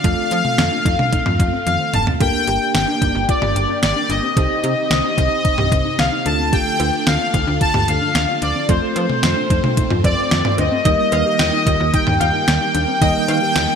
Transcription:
Already playing: F4 F5
0.04 F2 A3 C4 F4 A4, kick, closed hi-hat
0.31 F3 F4, closed hi-hat
0.45 mid tom
0.58 F2 C4, snare, closed hi-hat
0.72 D4
0.85 F2 D#4, kick, closed hi-hat
0.99 D4, mid tom
1.12 D#4, kick, closed hi-hat
1.26 F2 F4, mid tom
1.39 F2, kick, closed hi-hat
1.53 C4
1.66 F2 F5, closed hi-hat, high tom
1.80 C4
1.93 F1 D4 A5, closed hi-hat, mid tom
2.07 C4, floor tom
2.20 G1 A#3 D4 G4 A4 A#4 G5, kick, closed hi-hat
2.47 G1 G4, closed hi-hat
2.75 G1 C4 G5, snare, closed hi-hat
2.88 D4
3.02 G1 D#4, kick, closed hi-hat
3.15 G1 D4
3.29 F4 D5, kick, closed hi-hat
3.42 G1 G4, mid tom
3.56 G1, closed hi-hat
3.69 D4
3.83 G1 D5, snare, closed hi-hat
3.96 D4
4.10 G1 D4 D#5, closed hi-hat
4.23 C4
4.37 C2 C3 C4 D#4 G4 A4 C5, kick, closed hi-hat
4.64 C3 G4, closed hi-hat
4.91 C2 C4, snare, closed hi-hat
5.04 D4
5.18 C2 D#4, kick, closed hi-hat
5.31 C4
5.45 D#4, kick, closed hi-hat
5.58 C2 G4, mid tom
5.72 C2, kick, closed hi-hat
5.85 D#4
5.99 C2 F5, snare, closed hi-hat
6.12 D#4
6.26 D2 D3 A3 D4 F4 A4 A5, closed hi-hat
6.39 C4
6.53 G4 G5, kick, closed hi-hat, swell
6.80 D2 F4, closed hi-hat, cowbell
7.07 D2 C4 F5, snare, closed hi-hat
7.20 D4
7.34 D2 D#4, kick, closed hi-hat
7.47 D2 D4
7.61 F4 A5, kick, closed hi-hat
7.74 D2 G4, mid tom
7.88 D2 F5, closed hi-hat
8.01 D4
8.15 D2, snare, closed hi-hat
8.28 D4
8.42 D2 D4 D5, closed hi-hat
8.55 C4
8.69 F2 A3 C4 F4 A4 C5, kick, closed hi-hat
8.96 F3 F4, closed hi-hat, cowbell
9.10 mid tom
9.23 F2 C4, snare, closed hi-hat
9.37 D4
9.50 F2 D#4, kick, closed hi-hat
9.64 D4, mid tom
9.77 D#4, kick, closed hi-hat
9.90 F2 F4, mid tom
10.04 F2 D5, kick, closed hi-hat, cowbell
10.18 C4
10.31 F2, snare, closed hi-hat
10.45 C4, mid tom
10.58 D2 D4 D#5, closed hi-hat, cowbell
10.72 C4
10.85 D#2 D#3 G3 A#3 D#4 G4 A#4 D#5, kick, closed hi-hat
11.12 D#2 F5, closed hi-hat, cowbell
11.26 G4
11.39 D#2 F4 G5, snare, closed hi-hat
11.53 D#4
11.66 D#2 F4 D#5, kick, closed hi-hat
11.80 D#2 F4
11.94 D#4 G5, kick, closed hi-hat
12.07 D#2, mid tom
12.20 D#2 F4 F5, closed hi-hat
12.34 D#4
12.48 D#2, snare, closed hi-hat
12.61 D#4
12.75 D#2 D4, closed hi-hat
12.88 C4
13.01 D#2 G3 A#3 D#4 G4 A#4 D#5 G5 A5, kick, closed hi-hat
13.28 D#3 F5, closed hi-hat, cowbell
13.42 G4
13.55 D#2 F4 G5, snare, closed hi-hat
13.69 D#4

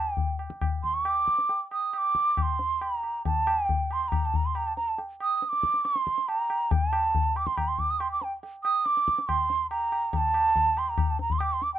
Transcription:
Already playing: A5
0.14 G5, tabla tin, tabla ge
0.39 tabla na
0.50 tabla ke
0.61 tabla na, tabla ge
0.84 C6, tabla ge
0.95 C#6
1.05 D6, tabla na
1.28 tabla ke
1.38 tabla te
1.49 tabla tin
1.71 D#6, tabla na
1.93 D#6, tabla na
1.98 D6
2.15 tabla ke
2.37 D6, tabla na, tabla ge
2.42 C6
2.59 tabla te
2.81 A#5, tabla na
3.03 tabla na
3.25 A5, tabla tin, tabla ge
3.47 tabla na
3.65 G5
3.69 tabla tin, tabla ge
3.91 C6, tabla na
4.04 C6
4.08 A#5, tabla na, tabla ge
4.25 A5
4.34 A#5, tabla ge
4.46 C6
4.55 A#5, tabla na
4.67 A5
4.77 A#5, tabla te
4.88 A5
4.98 tabla tin
5.20 D#6, tabla na
5.37 D#6
5.42 D#6, tabla te
5.49 D6, tabla te
5.63 tabla ke
5.74 tabla te
5.85 C6, tabla te
5.96 tabla te
6.07 tabla ke
6.18 tabla te
6.28 A#5, tabla na
6.50 tabla na
6.71 G5, tabla tin, tabla ge
6.90 A5, tabla na
7.15 tabla tin, tabla ge
7.36 D6, tabla na
7.47 C6, tabla ke
7.57 A#5, tabla na, tabla ge
7.68 C6
7.79 D6, tabla ge
7.90 D#6
8.00 C6, tabla na
8.12 D6
8.21 G5, tabla te
8.43 tabla tin
8.64 D#6, tabla na
8.86 D6, tabla te
8.97 tabla te
9.08 tabla ke
9.18 tabla te
9.28 C6, tabla na, tabla ge
9.50 tabla te
9.71 A#5, tabla na
9.92 tabla na
10.13 A5 A#5, tabla tin, tabla ge
10.34 tabla na
10.56 tabla tin, tabla ge
10.77 C6, tabla na
10.89 A#5
10.98 tabla na, tabla ge
11.10 A5
11.19 A#5, tabla te
11.30 C6, tabla ge
11.39 D6 D#6, tabla na
11.53 C6
11.62 D6, tabla te
11.74 G5

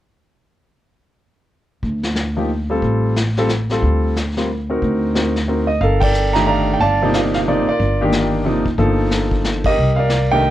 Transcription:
1.83 D2, brush sweep, kick
2.03 snare
2.16 snare, hi-hat pedal
2.37 F3 A#3 D#4 G4
2.70 G3 C4 F4 A4
2.82 A1, brush sweep, kick
3.16 snare, hi-hat pedal
3.37 G3 C4 F4 A4, snare
3.49 snare, hi-hat pedal
3.70 G3 C4 F4 A4, snare
3.82 D2, brush sweep, kick
4.17 snare, hi-hat pedal
4.37 G3 C4 F4 A#4, snare
4.70 C4 D#4 F#4 A#4
4.82 D2, brush sweep, kick
5.15 C4 D#4 F#4 A#4, snare, hi-hat pedal
5.36 snare
5.48 C4 D#4 F#4 A#4
5.67 D#5
5.81 G1 A4 A#4 F5, brush sweep, kick
6.00 A#4 D5 G5, kick, ride
6.14 hi-hat pedal
6.33 D#3 A3 D4 G4 A#5, snare
6.46 D5 F5 A#5
6.73 G5
6.80 G1 D5 F5 A5, brush sweep, kick
7.02 C3 F3 A#3 D#4
7.14 F5, snare, hi-hat pedal
7.34 F5, snare
7.47 C3 F3 A#3 D#4 D5
7.66 D5, muted upright bass stroke
7.71 F4 A#4
7.79 G1, brush sweep, kick
8.01 D#3 A#3 D4 G4
8.12 snare, hi-hat pedal
8.45 C3 F3 A#3 D#4
8.66 kick
8.78 G1 F3 A#3 D#4 A4, brush sweep, kick
9.11 snare, hi-hat pedal
9.31 kick
9.44 snare, hi-hat pedal
9.64 A#4 D#5, kick, ride
9.68 G4
9.77 C2, brush sweep
9.96 A#4 D5 F5
10.10 snare, hi-hat pedal
10.32 D#3 A3 D4 G4 A#4 D#5 G5

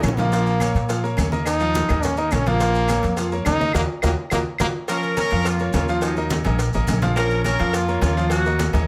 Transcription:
Already playing: A#3 A#4 D#5
0.03 A#1 C#4, cowbell, high conga, low timbale, low agogo, claves, maracas
0.09 low bongo
0.17 F3 A#3 F4 F5, cowbell, low bongo, high conga, low timbale, low agogo, maracas
0.31 F3 F4 F5, cowbell, high conga, low agogo, maracas
0.46 high conga, low agogo, maracas
0.60 A#3 A#4 C#5, cowbell, high conga, low timbale, low agogo, claves, maracas
0.75 A#2, cowbell, high conga, maracas
0.89 F3 F4 F5, cowbell, high conga, low agogo, maracas
1.04 A#3 A#4 C#5, high conga, maracas
1.17 D#2, cowbell, high conga, low timbale, low agogo, claves, maracas
1.32 A#3 A#4 D#5, high conga, maracas
1.45 D#4, cowbell, high conga, low agogo, claves, maracas
1.60 F3 F4 F5, high conga, maracas
1.74 cowbell, high conga, low timbale, low agogo, maracas
1.89 D#2 A#3 A#4 D#5, cowbell, high conga, low conga, low agogo, claves, maracas
2.03 C#4, cowbell, high conga, low conga, maracas
2.17 A#3 D#4 A#4 D#5, high conga, low agogo, maracas
2.31 A#1 C#4, cowbell, high conga, low timbale, low agogo, claves, maracas
2.46 F3 A#3 F4 F5, cowbell, high conga, low agogo, maracas
2.60 F3 F4 F5, cowbell, low agogo, maracas
2.75 high conga, low agogo, maracas
2.88 A#3 A#4 C#5, cowbell, high conga, low timbale, low agogo, claves, maracas
3.03 F2, cowbell, high conga, maracas
3.17 F3 F4 F5, cowbell, high conga, low agogo, maracas
3.32 A#3 A#4 C#5, high conga, maracas
3.45 D#2 D#4, cowbell, high conga, low timbale, low agogo, claves, maracas
3.60 A#3 A#4 D#5, high conga, maracas
3.73 D#2 A#3 F#4 A#4 D#5, cowbell, high conga, high timbale, claves, maracas
4.02 D#2 A#3 F#4 A#4 D#5, cowbell, high conga, high timbale, claves, maracas
4.30 D#2 A#3 F#4 A#4 D#5, cowbell, high conga, high timbale, claves, maracas
4.58 D#2 A#3 F#4 A#4 D#5, cowbell, high conga, high timbale, claves, maracas
4.88 F3 C#4 F4 A#4 F5, cowbell, high conga, low agogo, maracas
5.03 high conga, low agogo, maracas
5.17 A#3 C#4 A#4 C#5, cowbell, high conga, low timbale, low agogo, maracas
5.31 F2 F3 F4 F5, cowbell, high conga, maracas
5.45 A#3 F4, cowbell, high conga, low agogo, maracas
5.59 A#3 A#4 C#5, high conga, maracas
5.73 D#2 A#3 F4 A#4 C#5, cowbell, high conga, low timbale, low agogo, maracas
5.88 F3 F4 F5, maracas
6.02 F#3 D#4, cowbell, high conga, low agogo, maracas
6.17 A#3 A#4 D#5, high conga, maracas
6.30 cowbell, high conga, low timbale, low agogo, maracas
6.44 A#1 A#3 A#4 D#5, cowbell, high conga, low conga, low agogo, maracas
6.59 cowbell, high conga, maracas
6.73 A1 A#3 A#4 D#5, high conga, low agogo, maracas
6.87 A#1, cowbell, high conga, low timbale, low agogo, maracas
7.02 F3 F4 F5, cowbell, high conga, low agogo, maracas
7.16 F3 C#4 F4 A#4 F5, cowbell, high conga, low agogo, maracas
7.31 high conga, low agogo, maracas
7.44 A#3 C#4 A#4 C#5, cowbell, high conga, low timbale, low agogo, maracas
7.59 F2 F3 F4 F5, cowbell, high conga, maracas
7.73 A#3 F4, cowbell, high conga, low agogo, maracas
7.88 A#3 A#4 C#5, high conga, maracas
8.01 D#2 A#3 F4 A#4 C#5, cowbell, high conga, low timbale, low agogo, maracas
8.17 F3 F4 F5, maracas
8.30 A#3 F#4, cowbell, high conga, low agogo, maracas
8.45 A#3 A#4 D#5, high conga, maracas
8.59 cowbell, high conga, low timbale, low agogo, maracas
8.73 D#2 A#3 A#4 D#5, cowbell, high conga, low conga, low agogo, maracas

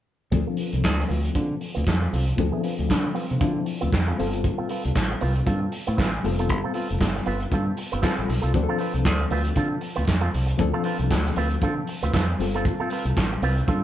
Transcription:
0.31 D2 F3 C4 D4 A4, muted clean electric guitar stroke, kick, closed hi-hat
0.47 C4 F4 A4
0.57 C4 F4 B4, open hi-hat
0.73 C2, muted clean electric guitar stroke, closed hi-hat
0.84 D2, muted clean electric guitar stroke, kick, snare, clap, closed hi-hat
0.98 muted clean electric guitar stroke, snare
1.08 D2 C4 F4 B4, open hi-hat
1.24 muted clean electric guitar stroke, closed hi-hat
1.35 D3 C4 F4 A4, kick, closed hi-hat
1.50 muted clean electric guitar stroke
1.61 muted clean electric guitar stroke, open hi-hat
1.74 D2 C4 F4 B4, closed hi-hat
1.87 F2, kick, snare, clap, closed hi-hat
2.02 C4 F4 A4
2.12 C2 C4 F4 A4, open hi-hat
2.27 muted clean electric guitar stroke, closed hi-hat
2.37 D2 F3 C4 D4 A4, muted clean electric guitar stroke, kick, closed hi-hat
2.52 C4 F4 A4
2.64 C4 F4 B4, open hi-hat
2.77 D2, muted clean electric guitar stroke, closed hi-hat
2.88 D3, muted clean electric guitar stroke, kick, snare, clap, closed hi-hat
3.04 muted clean electric guitar stroke
3.15 C4 F4 B4, open hi-hat
3.29 C3, muted clean electric guitar stroke, closed hi-hat
3.40 D3 F3 C4 D4 E4 F4 A4, kick, closed hi-hat
3.55 muted clean electric guitar stroke
3.66 muted clean electric guitar stroke, open hi-hat
3.81 D2 C4 F4 B4, closed hi-hat
3.92 F2, kick, snare, clap, closed hi-hat
4.07 C4 F4 A4
4.18 G1 G3 C4 F4 A4, open hi-hat
4.33 muted clean electric guitar stroke, closed hi-hat
4.44 muted clean electric guitar stroke, kick, closed hi-hat
4.58 C4 F4 A4
4.69 C4 F4 B4, open hi-hat
4.84 C2, muted clean electric guitar stroke, closed hi-hat
4.95 A1, muted clean electric guitar stroke, kick, snare, clap, closed hi-hat
5.11 muted clean electric guitar stroke
5.21 C2 C4 F4 B4, open hi-hat
5.36 muted clean electric guitar stroke, closed hi-hat
5.46 G2 C4 F4 A4, kick, closed hi-hat
5.62 muted clean electric guitar stroke
5.72 muted clean electric guitar stroke, open hi-hat
5.87 A2 C4 F4 B4, closed hi-hat
5.97 A1 C4 F4 B4, kick, snare, clap, closed hi-hat
6.13 muted clean electric guitar stroke
6.23 F1 G3 B3 F4 A4, muted clean electric guitar stroke, open hi-hat
6.30 C4
6.39 C4 F4 A4, closed hi-hat
6.49 G1, muted clean electric guitar stroke, kick, closed hi-hat
6.64 C4 F4 A4
6.74 C4 F4 B4, open hi-hat
6.89 F1, muted clean electric guitar stroke, closed hi-hat
7.01 G1, muted clean electric guitar stroke, kick, snare, clap, closed hi-hat
7.16 muted clean electric guitar stroke, snare
7.26 G1 C4 F4 B4, open hi-hat
7.40 muted clean electric guitar stroke, closed hi-hat
7.51 G2 C4 F4 A4, kick, closed hi-hat
7.67 muted clean electric guitar stroke
7.77 muted clean electric guitar stroke, open hi-hat
7.91 G1 C4 F4 B4, closed hi-hat
8.02 G3 C4 F4 A4 B4, kick, snare, clap, closed hi-hat
8.18 A1, muted clean electric guitar stroke
8.29 B1, muted clean electric guitar stroke, open hi-hat
8.42 C2 C4 F4 A4, closed hi-hat
8.54 D2 F3 C4 D4 G4, muted clean electric guitar stroke, kick, closed hi-hat
8.64 A4
8.69 C4 F4 A4
8.79 C4 F4 B4, open hi-hat
8.94 C2, muted clean electric guitar stroke, closed hi-hat
9.05 D2, muted clean electric guitar stroke, kick, snare, clap, closed hi-hat
9.20 muted clean electric guitar stroke
9.30 D2 C4 F4 B4, open hi-hat
9.44 muted clean electric guitar stroke, closed hi-hat
9.55 D3 C4 F4 A4, kick, closed hi-hat
9.70 muted clean electric guitar stroke
9.81 muted clean electric guitar stroke, open hi-hat
9.96 D2 C4 F4 B4, closed hi-hat
10.06 F2, muted clean electric guitar stroke, kick, snare, clap, closed hi-hat
10.21 C4 F4 A4
10.33 C2, muted clean electric guitar stroke, open hi-hat
10.46 muted clean electric guitar stroke, closed hi-hat
10.58 D2 F3 C4 D4 A4, muted clean electric guitar stroke, kick, closed hi-hat
10.73 C4 F4 A4
10.84 C4 F4 B4, open hi-hat
10.99 C2, muted clean electric guitar stroke, closed hi-hat
11.11 D2, muted clean electric guitar stroke, kick, snare, clap, closed hi-hat
11.26 muted clean electric guitar stroke, snare
11.36 D2 C4 F4 B4, open hi-hat
11.51 muted clean electric guitar stroke, closed hi-hat
11.61 D3 C4 F4 A4, kick, closed hi-hat
11.77 muted clean electric guitar stroke
11.87 muted clean electric guitar stroke, open hi-hat
12.02 D2 C4 F4 B4, closed hi-hat
12.13 F2 C4 F4 B4, kick, snare, clap, closed hi-hat
12.29 muted clean electric guitar stroke
12.38 G1 G3 C4 F4 A4, muted clean electric guitar stroke, open hi-hat
12.54 C4 F4 A4, closed hi-hat
12.65 muted clean electric guitar stroke, kick, closed hi-hat
12.80 C4 F4 A4
12.90 C4 F4 B4, open hi-hat
13.05 C2, closed hi-hat
13.17 A1, muted clean electric guitar stroke, kick, snare, clap, closed hi-hat
13.32 muted clean electric guitar stroke
13.42 C2 C4 F4 B4, open hi-hat
13.57 muted clean electric guitar stroke, closed hi-hat
13.67 G2 C4 F4 A4, kick, closed hi-hat

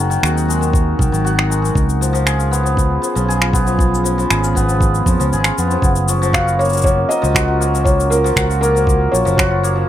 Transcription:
Already playing: F#1 F#3 A#3 C4 D#4 F#4 A#4
0.10 D#3, cabasa
0.23 D#2 F#4, finger snap, cabasa
0.35 D#4, cabasa
0.48 G#3, cabasa
0.61 D#3, cabasa
0.73 kick, cabasa
0.99 C2 D#3, kick, cabasa
1.12 G#1 D#3, cabasa
1.25 F#4, cabasa
1.38 D#4, finger snap
1.50 G#3, cabasa
1.62 D#3, cabasa
1.75 C#2 F3 B3 C#4 G#4, kick, cabasa
1.89 cabasa
2.01 F3, cabasa
2.13 F3, cabasa
2.26 G#4, finger snap, cabasa
2.38 F4, cabasa
2.51 B3, cabasa
2.63 F3, cabasa
2.77 kick, cabasa
3.02 F3, cabasa
3.15 B1 F3, cabasa
3.28 G#4, cabasa
3.41 F4, finger snap
3.53 B3, kick, cabasa
3.67 F3, cabasa
3.79 kick, cabasa
3.94 cabasa
4.04 F3, cabasa
4.18 F3, cabasa
4.30 G#1 G#4, finger snap, cabasa
4.44 F4, cabasa
4.55 B3, kick, cabasa
4.69 F3, cabasa
4.81 kick, cabasa
4.95 cabasa
5.06 F2 F3, kick, cabasa
5.20 C#2 F3, cabasa
5.33 G#1 G#4, cabasa
5.44 F4, finger snap, cabasa
5.58 F2 B3, cabasa
5.71 F3, cabasa
5.82 F#1 C#4 A#4 F#5, kick, cabasa
5.96 cabasa
6.08 F3 C#6, cabasa
6.22 F3, cabasa
6.33 F#4 F5, finger snap, kick, cabasa
6.46 F4, cabasa
6.59 A#3 C#5, cabasa
6.65 cabasa
6.69 F3, cabasa
6.73 cabasa
6.77 cabasa
6.82 C#5 F#5, kick, cabasa
6.87 cabasa
7.09 F3 D#5 A#5, cabasa
7.22 C#2 F3 F#4, cabasa
7.34 F#4 F#5, finger snap, kick, cabasa
7.48 F4
7.60 A#3 C#6, cabasa
7.74 F3, cabasa
7.84 C#5, kick, cabasa
8.00 cabasa
8.10 F3 A#4, cabasa
8.24 F3, cabasa
8.36 C#2 F#4 F#5, finger snap, kick, cabasa
8.50 F4, cabasa
8.61 A#3 A#4 A#5, cabasa
8.75 F3 F#4, cabasa
8.87 F#5, kick, cabasa
9.12 A#1 F3 C#5 C#6, cabasa
9.25 F#1 F3, cabasa
9.37 F#4 C#5, finger snap, kick, cabasa
9.51 F4
9.63 A#3, cabasa
9.76 F3

